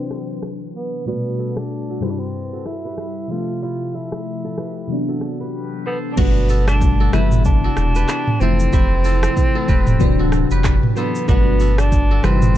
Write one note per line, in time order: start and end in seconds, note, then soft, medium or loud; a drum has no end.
0.00 1.03 C3 medium
0.00 1.04 E3 medium
0.00 1.04 F#3 medium
0.00 0.49 C4 loud
0.00 1.05 D4 medium
0.00 1.05 B4 medium
0.11 cross-stick medium
0.43 cross-stick medium
0.75 1.05 B3 medium
1.05 1.14 A#2 soft
1.05 2.01 G3 medium
1.05 2.03 A3 medium
1.05 1.59 B3 medium
1.05 2.76 D4 medium
1.05 1.39 F#4 medium
1.05 2.03 F#4 medium
1.12 2.05 B2 medium
1.39 1.90 F#4 medium
1.39 1.89 A4 medium
1.57 2.05 D4 loud
1.57 cross-stick loud
1.89 2.10 F#4 medium
1.89 2.53 A4 medium
2.00 3.26 G2 medium
2.00 3.27 C3 medium
2.00 3.28 G3 medium
2.00 2.12 C4 medium
2.00 2.60 G4 medium
2.00 2.85 B4 medium
2.00 3.28 B4 medium
2.00 cross-stick medium
2.05 3.29 E4 medium
2.11 2.21 D4 medium
2.19 2.68 C4 medium
2.53 2.92 F#4 medium
2.53 3.31 A4 medium
2.66 3.32 E4 loud
2.66 cross-stick medium
2.85 3.62 G4 medium
2.85 3.36 B4 medium
2.98 cross-stick medium
3.28 4.85 C3 medium
3.28 4.86 F3 medium
3.28 4.87 A3 medium
3.28 3.62 F4 loud
3.28 3.94 A4 medium
3.28 4.49 C5 medium
3.33 3.39 D4 medium
3.39 4.91 E5 medium
3.62 4.01 E4 medium
3.62 3.96 F4 loud
3.62 4.58 G4 medium
3.94 5.22 E4 loud
3.94 4.45 F4 medium
3.94 4.44 A4 medium
4.12 cross-stick loud
4.45 5.15 F4 medium
4.45 5.08 A4 medium
4.58 5.15 G4 medium
4.58 5.40 B4 medium
4.58 cross-stick medium
4.87 6.14 C3 medium
4.87 6.14 E3 medium
4.87 6.15 F#3 medium
4.87 6.16 B3 medium
4.92 6.16 D4 medium
5.08 5.47 F#4 medium
5.08 5.86 A4 medium
5.21 cross-stick medium
5.40 6.24 G4 medium
5.40 5.92 B4 medium
5.86 5.98 B3 medium
5.86 6.49 A4 medium
5.86 7.05 C5 medium
6.12 6.19 D4 medium
6.16 7.09 G1 loud
6.16 7.13 B2 medium
6.16 7.13 F#3 medium
6.16 7.12 G3 medium
6.16 7.14 A3 medium
6.16 6.67 B3 medium
6.16 7.86 D4 medium
6.16 7.14 D4 medium
6.16 6.50 F#4 loud
6.16 kick loud
6.16 crash loud
6.16 shaker medium
6.49 7.01 F#4 medium
6.49 7.00 A4 medium
6.49 open hi-hat medium
6.49 shaker medium
6.68 7.10 D4 medium
6.68 cross-stick loud
6.68 shaker medium
6.81 kick medium
6.81 shaker medium
7.00 7.20 F#4 medium
7.00 7.64 A4 medium
7.12 7.69 G1 loud
7.12 8.33 C3 medium
7.12 8.34 E3 medium
7.12 8.34 G3 medium
7.12 8.34 B3 medium
7.12 7.43 E4 loud
7.12 8.35 E4 medium
7.12 7.71 G4 medium
7.12 7.96 B4 medium
7.12 cross-stick loud
7.12 shaker medium
7.31 mid tom loud
7.31 shaker medium
7.45 8.42 D4 loud
7.45 kick medium
7.45 shaker medium
7.64 8.03 F#4 medium
7.64 8.42 A4 medium
7.77 8.05 E1 loud
7.77 cross-stick medium
7.77 shaker medium
7.95 8.73 G4 medium
7.95 8.47 B4 medium
7.95 shaker medium
8.09 cross-stick loud
8.09 clap medium
8.09 shaker medium
8.27 mid tom loud
8.40 8.69 F1 loud
8.40 9.61 C3 medium
8.40 9.61 E3 medium
8.40 9.62 F3 medium
8.40 9.62 A3 medium
8.40 10.70 C4 loud
8.40 9.62 E4 loud
8.40 9.04 A4 medium
8.40 9.60 C5 medium
8.40 shaker medium
8.60 shaker medium
8.73 9.28 F1 loud
8.73 9.12 E4 medium
8.73 9.69 G4 loud
8.73 kick loud
8.73 shaker medium
9.04 9.56 F4 medium
9.04 9.55 A4 medium
9.04 open hi-hat medium
9.04 shaker medium
9.23 cross-stick loud
9.23 shaker medium
9.37 kick medium
9.37 shaker medium
9.55 10.26 F4 medium
9.55 10.19 A4 medium
9.68 9.96 E1 medium
9.68 10.26 G4 medium
9.68 10.51 B4 medium
9.68 kick loud
9.68 shaker medium
9.87 mid tom loud
9.87 shaker medium
9.99 10.44 D1 loud
9.99 10.90 C3 loud
9.99 10.91 E3 medium
9.99 10.91 F#3 loud
9.99 10.92 D4 loud
9.99 10.91 B4 medium
9.99 kick loud
9.99 shaker medium
10.19 10.58 F#4 medium
10.19 10.97 A4 medium
10.32 cross-stick medium
10.32 shaker medium
10.51 10.79 F#1 medium
10.51 11.35 G4 medium
10.51 11.03 B4 medium
10.51 shaker medium
10.64 kick loud
10.64 cross-stick loud
10.64 clap loud
10.64 shaker medium
10.83 mid tom loud
10.95 11.26 C3 medium
10.95 11.26 E3 medium
10.95 11.26 F#3 medium
10.95 11.26 B3 medium
10.95 11.27 B3 medium
10.95 11.27 D4 medium
10.95 11.60 A4 medium
10.95 12.15 C5 medium
10.95 shaker medium
11.15 shaker medium
11.27 12.20 G1 loud
11.27 12.23 B2 medium
11.27 12.23 F#3 medium
11.27 12.22 G3 medium
11.27 12.24 A3 medium
11.27 11.80 B3 loud
11.27 12.24 D4 medium
11.27 12.58 D4 medium
11.27 11.61 F#4 loud
11.27 kick loud
11.27 shaker medium
11.60 12.11 F#4 medium
11.60 12.11 A4 medium
11.60 open hi-hat medium
11.60 shaker medium
11.78 12.25 D4 loud
11.78 cross-stick loud
11.78 shaker medium
11.92 kick medium
11.92 shaker medium
12.11 12.31 F#4 medium
12.11 12.58 A4 medium
12.22 12.58 G1 loud
12.22 12.58 C3 medium
12.22 12.58 E3 medium
12.22 12.58 G3 medium
12.22 12.58 C4 loud
12.22 12.32 D#4 medium
12.22 12.58 G4 medium
12.22 12.58 B4 medium
12.22 cross-stick loud
12.22 shaker medium
12.31 12.58 E4 medium
12.42 mid tom loud
12.42 shaker medium